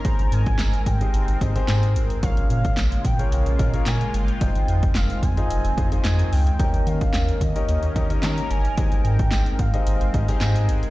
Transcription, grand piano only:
X:1
M:4/4
L:1/16
Q:1/4=110
K:Ab
V:1 name="Grand piano"
[CEAc]4- [CEAc] z2 [CEGAc]2 z [CEGAe] [CEGAc]4 z | [DFABd]4- [DFABd] z2 [DFABd]2 z [DFABe] [DFABd]4 z | [EFAce]4- [EFAce] z2 [EFAce]2 z [EFAce] [EFAce]4 z | [EGBde]4- [EGBde] z2 [EGBde]2 z [EGBde] [EGBde]4 z |
[EGAce]4- [EGAce] z2 [EGAce]2 z [EGAce] [EGAce]4 z |]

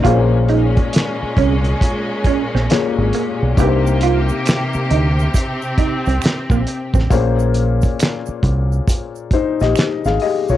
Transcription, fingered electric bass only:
X:1
M:4/4
L:1/16
Q:"Swing 16ths" 1/4=68
K:Bbdor
V:1 name="Fingered electric bass" clef=bass
B,,,4 z2 C,,2 z3 B,,, z A,,, z =B,,, | C,,4 z2 =D,,2 z3 C,, z B,,, z =A,,, | B,,,4 z2 C,,2 z3 B,,, z A,,, z =B,,, |]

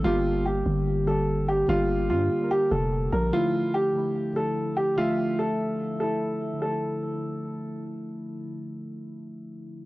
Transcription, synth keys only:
X:1
M:4/4
L:1/16
Q:1/4=146
K:Dm
V:1 name="Synth keys" clef=bass
[D,G,B,G]4- [D,G,B,G] z4 z [D,G,B,G]4 z2 | [D,G,B,G]4 z3 [D,G,B,B]4- [D,G,B,B] z4 | [D,F,A,E]2 z [D,F,A,E]2 z [D,F,A,E]3 z [D,F,A,E]4 z2 | [D,F,A,e]4- [D,F,A,e] z4 z [D,F,A,E]4 z2 |
[D,F,A,E]16- | [D,F,A,E]16 |]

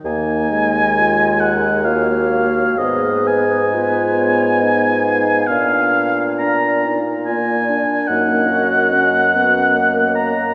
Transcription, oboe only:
X:1
M:3/4
L:1/8
Q:1/4=69
K:Ebm
V:1 name="Oboe"
a3 g f2 | e a4- a | f2 b z a2 | g4- g b |]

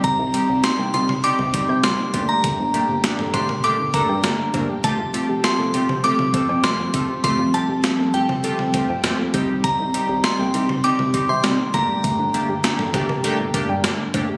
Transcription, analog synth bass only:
X:1
M:4/4
L:1/16
Q:1/4=100
K:Gm
V:1 name="Analog synth bass" clef=bass
C,, C,, z C,, z C,, C,, z2 C,, z C, C,, z G,,,2- | G,,, G,,, z G,,, z G,,, G,,, z2 G,,, z G,, G,,, z G,,, z | F,,, F,,, z F,,, z F,,, F,,, z2 F,,, z F,, F,,, z F,,, z | F,,, F,,, z F,,, z F,,, F,,, z2 F,,, z F,, F,,, z C,,2- |
C,, C,, z C,, z C,, C,, z2 C,, z C, C,, z G,,,2- | G,,, G,,, z G,,, z G,,, G,,, z2 G,,, z G,, G,,, z G,,, z |]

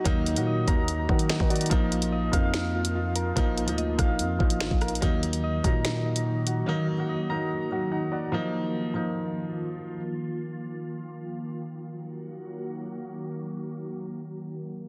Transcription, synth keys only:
X:1
M:4/4
L:1/8
Q:1/4=145
K:Ebm
V:1 name="Synth keys"
[E,EGb] E e b2 E E G | B, F e f2 F F B | B, F e f2 F F B | E, E e b2 E E G |
E, E e b2 E E G | z8 | z8 | z8 |
z8 |]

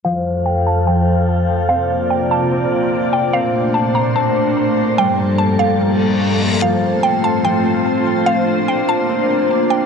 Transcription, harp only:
X:1
M:4/4
L:1/8
Q:1/4=146
K:F
V:1 name="Harp"
F,4 F,4 | C4 C4 | C4 C4 | G,4 G,4 |
F,4 F,4 | C4 C4 |]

